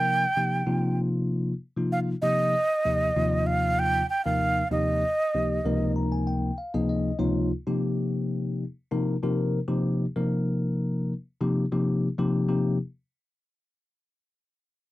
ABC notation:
X:1
M:4/4
L:1/16
Q:1/4=97
K:Ebmix
V:1 name="Flute"
g6 z6 f2 e2- | e6 f2 g2 g f3 e2- | e6 z8 z2 | z16 |
z16 | z16 |]
V:2 name="Tine electric piano"
z16 | z16 | z6 b a g2 f e e2 d2 | z16 |
z16 | z16 |]
V:3 name="Tine electric piano"
[C,F,B,EB] z [C,F,B,EG]2 [C,F,B,EF]4- [C,F,B,EF] z2 [C,F,B,EF]2 z [C,F,B,EG]2 | z2 [E,,C,F,B,EG]2 [E,,C,F,B,EF]4- [E,,C,F,B,EF] z2 [E,,C,F,B,EB]2 z [E,,C,F,B,EG]2 | z2 [D,,C,F,B,EG]2 [D,,C,F,B,EB]4- [D,,C,F,B,EB] z2 [D,,C,F,B,EA]2 z [D,,C,F,B,EF]2 | z [C,F,B,EG]6 z2 [C,F,B,EB]2 [C,F,B,EB]2 z [C,F,B,EG]2 |
z [C,F,B,EB]6 z2 [C,F,B,EG]2 [C,F,B,EG]2 z [C,F,B,EG]2 | [C,F,B,EG]2 z12 z2 |]